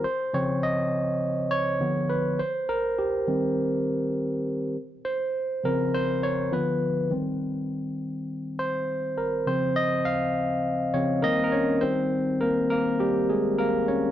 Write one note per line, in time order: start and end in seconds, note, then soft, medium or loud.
0.04 0.35 C5 medium
0.33 1.18 C#3 medium
0.33 1.18 F3 soft
0.33 1.18 C4 medium
0.33 0.64 C#5 medium
0.63 1.18 D#5 medium
1.51 2.12 C#5 medium
1.80 2.36 D3 soft
1.80 2.37 F3 soft
1.80 2.37 B3 medium
2.10 2.37 B4 medium
2.39 2.70 C5 medium
2.69 2.96 A#4 medium
2.98 3.53 G4 medium
3.27 4.12 D#3 medium
3.27 4.12 G3 soft
3.27 4.12 C4 medium
5.05 5.66 C5 medium
5.63 6.48 C#3 medium
5.63 6.48 F3 soft
5.63 6.49 C4 medium
5.63 5.95 A#4 medium
5.94 6.24 C5 loud
6.23 6.50 C#5 loud
6.51 6.92 D3 soft
6.51 6.92 F3 medium
6.51 6.93 B3 medium
6.51 7.08 B4 medium
7.10 9.42 D#3 soft
7.10 9.42 G3 soft
7.10 9.43 C4 medium
8.59 9.14 C5 medium
9.18 9.48 A#4 medium
9.46 10.31 C#3 soft
9.46 10.31 F3 soft
9.46 10.31 C4 medium
9.46 9.77 C5 medium
9.76 10.04 D#5 loud
10.05 10.60 F5 loud
10.93 11.20 C#3 soft
10.93 11.20 F3 soft
10.93 11.21 C4 medium
10.93 11.24 C#5 medium
11.22 11.63 D#3 medium
11.22 11.64 G3 soft
11.22 11.51 A#3 medium
11.22 11.64 C4 medium
11.22 11.43 A#4 medium
11.22 11.42 D#5 loud
11.44 11.71 A#4 medium
11.52 11.81 C#4 medium
11.52 11.83 C#5 medium
11.81 12.66 D#3 soft
11.81 12.66 G3 soft
11.81 12.37 C4 medium
11.81 12.42 C5 medium
12.41 12.69 A#3 medium
12.41 12.68 A#4 medium
12.70 12.99 A#3 medium
12.70 12.98 A#4 medium
13.00 13.14 G3 medium
13.00 13.13 G4 medium
13.30 13.58 G#3 medium
13.30 13.57 G#4 medium
13.58 13.87 A#3 medium
13.58 13.86 A#4 medium
13.88 14.11 C#4 medium
13.88 14.11 C#5 medium